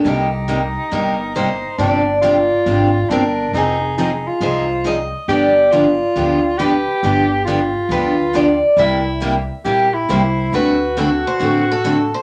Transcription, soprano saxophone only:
0.05 1.75 D#4 loud
1.78 2.19 D4 loud
2.22 3.11 F4 loud
3.09 3.53 D4 medium
3.54 3.95 D#4 loud
3.98 4.29 D#4 medium
4.27 5.07 F4 loud
5.29 5.73 G4 loud
5.72 6.60 F4 loud
6.58 7.44 G4 loud
7.45 8.73 F4 medium
8.78 9.39 E4 medium
9.65 9.95 G4 medium
9.94 10.53 E4 loud
10.55 12.22 F#4 loud

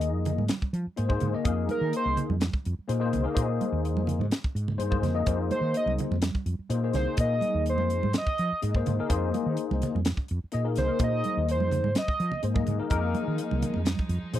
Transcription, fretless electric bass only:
0.00 0.15 D#2 medium
0.15 0.37 F2 medium
0.38 0.49 G#2 medium
0.62 muted fretless electric bass stroke soft
0.73 0.85 F3 medium
0.87 muted fretless electric bass stroke soft
0.99 1.20 G#2 medium
1.22 1.33 G#2 medium
1.35 muted fretless electric bass stroke soft
1.45 1.67 F2 medium
1.81 1.92 D#3 medium
2.06 2.16 C2 medium
2.17 muted fretless electric bass stroke soft
2.30 2.51 F2 medium
2.66 2.77 F2 medium
2.79 muted fretless electric bass stroke soft
2.89 3.11 A#2 medium
3.15 3.25 C2 medium
3.36 3.58 A#2 medium
3.72 3.97 D#2 medium
3.97 4.18 F2 medium
4.19 4.30 G#2 medium
4.44 muted fretless electric bass stroke soft
4.55 4.77 G#2 medium
4.79 5.01 G2 medium
5.02 5.24 F2 medium
5.27 5.49 F2 medium
5.61 5.73 D#3 medium
5.86 5.97 C2 medium
5.98 muted fretless electric bass stroke soft
6.11 6.33 F2 medium
6.35 muted fretless electric bass stroke soft
6.46 6.58 F2 medium
6.59 muted fretless electric bass stroke soft
6.70 6.92 A#2 medium
6.94 7.06 C2 medium
7.18 7.40 A#2 medium
7.54 7.80 D#2 medium
7.80 8.01 F2 medium
8.04 8.14 G#2 medium
8.27 muted fretless electric bass stroke soft
8.39 8.50 F3 medium
8.52 muted fretless electric bass stroke soft
8.63 8.84 G#2 medium
8.88 8.98 G#2 medium
9.01 muted fretless electric bass stroke soft
9.09 9.31 F2 medium
9.46 9.56 D#3 medium
9.71 9.81 C2 medium
9.83 muted fretless electric bass stroke soft
9.95 10.16 F2 medium
10.31 10.41 F2 medium
10.44 muted fretless electric bass stroke soft
10.54 10.75 A#2 medium
10.77 10.88 C2 medium
11.00 11.22 A#2 medium
11.37 11.60 D#2 medium
11.60 11.82 F2 medium
11.84 11.94 G#2 medium
12.08 muted fretless electric bass stroke soft
12.20 12.31 F3 medium
12.32 muted fretless electric bass stroke soft
12.43 12.65 G#2 medium
12.67 12.79 G#2 medium
12.81 muted fretless electric bass stroke soft
12.91 13.13 F2 medium
13.28 13.38 D#3 medium
13.52 13.62 C2 medium
13.64 muted fretless electric bass stroke soft
13.76 13.97 F2 medium
13.99 muted fretless electric bass stroke soft
14.09 14.21 F2 loud
14.23 muted fretless electric bass stroke soft
14.34 14.40 A#2 medium

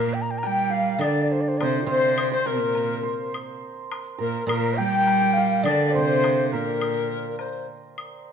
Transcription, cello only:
0.00 0.11 A#2 medium
0.45 1.03 G3 medium
1.02 1.31 D3 medium
1.61 1.86 C3 medium
1.87 2.47 C3 medium
2.45 3.33 A#2 medium
4.20 4.47 A#2 medium
4.49 4.80 A#2 medium
4.79 5.68 G3 medium
5.67 5.97 D3 medium
5.96 6.55 C3 medium
6.53 7.69 A#2 medium

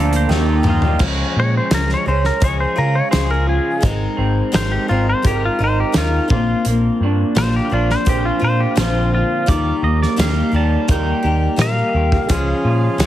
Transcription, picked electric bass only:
0.00 0.25 D2 medium
0.29 0.60 D#2 medium
0.65 0.95 D#2 medium
1.00 1.22 C#2 medium
1.36 1.58 A#2 medium
1.71 1.93 C#2 medium
2.07 2.29 C#2 medium
2.42 2.64 C#2 medium
2.78 3.00 C#3 medium
3.14 3.58 C#2 medium
3.83 4.05 G#1 medium
4.18 4.40 G#1 loud
4.54 4.76 G#1 medium
4.90 5.12 G#1 medium
5.25 5.47 G#1 medium
5.60 5.82 G#1 medium
5.95 6.17 D#2 medium
6.30 6.53 A#1 medium
6.66 6.88 A#1 medium
7.00 7.23 G2 medium
7.36 7.58 A#1 medium
7.72 7.94 A#1 medium
8.06 8.29 A#1 medium
8.42 8.64 A#2 loud
8.77 9.22 A#1 medium
9.49 9.70 D#2 medium
9.83 10.05 D#2 medium
10.19 10.41 D#2 medium
10.53 10.75 D#2 loud
10.89 11.11 D#2 medium
11.24 11.46 D#2 medium
11.58 11.80 A#2 medium
11.94 12.16 D#2 medium
12.30 12.52 C#2 medium
12.65 12.87 A#2 medium
12.99 13.06 C#2 medium

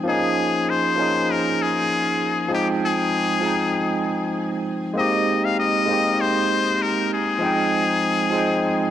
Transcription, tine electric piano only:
0.04 0.94 F3 medium
0.04 0.95 A#3 medium
0.04 0.95 C#4 medium
0.09 0.96 D#4 medium
0.09 0.97 G#4 medium
0.95 2.47 F3 medium
0.95 2.48 A#3 medium
0.95 2.48 C#4 medium
1.00 2.49 D#4 medium
1.00 2.50 G#4 medium
2.48 3.39 F3 medium
2.48 3.40 G#3 medium
2.48 3.40 C4 medium
2.54 3.41 D#4 medium
2.54 3.42 G5 loud
3.40 4.92 F3 medium
3.40 4.93 G#3 medium
3.40 4.94 C4 medium
3.46 4.94 D#4 medium
3.46 4.95 G5 medium
4.94 5.84 G#3 medium
4.94 5.84 A#3 medium
4.94 5.85 C4 medium
4.99 5.86 D#4 medium
4.99 5.87 G4 medium
5.86 7.37 G#3 medium
5.86 7.38 A#3 medium
5.86 7.39 C4 medium
5.91 7.39 D#4 medium
5.91 7.40 G4 medium
7.39 8.29 F3 medium
7.39 8.29 G#3 medium
7.39 8.30 C4 medium
7.44 8.31 D#4 medium
7.44 8.32 G5 medium
8.30 8.90 F3 medium
8.30 8.90 G#3 medium
8.30 8.90 C4 medium
8.36 8.90 D#4 medium
8.36 8.90 G5 medium

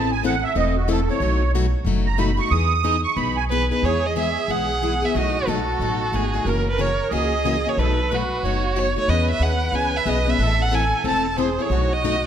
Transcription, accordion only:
0.00 0.10 A5 medium
0.12 0.23 G#5 loud
0.25 0.44 F#5 medium
0.44 0.56 E5 loud
0.56 0.76 D#5 medium
0.77 0.88 F#4 medium
0.90 1.09 A4 medium
1.10 1.52 C#5 medium
2.07 2.19 A#5 medium
2.19 2.39 B5 medium
2.39 2.52 C#6 loud
2.51 3.01 D#6 loud
3.04 3.16 C#6 loud
3.16 3.36 B5 medium
3.37 3.45 G#5 loud
3.82 5.18 G#4 medium
5.14 6.50 F#4 medium
6.45 7.13 A#4 medium
7.09 7.72 G#4 loud
7.76 8.11 A4 medium
8.08 8.43 B4 medium
8.44 8.92 C#5 loud
9.08 10.43 B4 medium
10.39 11.40 A4 medium
11.37 11.71 G#4 medium
11.70 12.27 F#4 medium

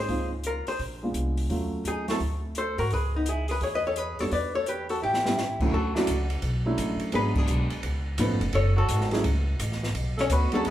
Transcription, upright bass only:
0.09 0.63 C#2 medium
0.67 muted upright bass stroke soft
0.79 1.12 A#1 medium
1.14 1.47 C2 medium
1.49 1.82 D#2 medium
1.84 2.17 D#2 medium
2.20 2.74 D2 medium
2.78 2.90 G#2 medium
2.91 3.58 C#2 medium
3.61 4.15 E2 medium
4.19 4.31 F2 medium
4.31 4.98 E2 medium
5.02 5.56 A1 medium
5.60 5.72 B1 medium
5.72 6.06 D2 medium
6.07 6.42 C#2 medium
6.42 6.77 B1 medium
6.77 6.98 A1 medium
6.99 muted upright bass stroke soft
7.12 7.47 G#1 medium
7.47 7.69 B1 medium
7.70 muted upright bass stroke soft
7.83 8.17 C#2 medium
8.18 8.28 A1 loud
8.28 8.39 G#1 medium
8.40 8.52 F1 medium
8.53 8.87 F#1 medium
8.88 9.23 G#1 medium
9.24 9.58 C#2 medium
9.59 9.93 A1 loud
9.94 10.28 B1 medium
10.29 10.50 D2 medium
10.52 muted upright bass stroke soft
10.65 10.70 E2 medium

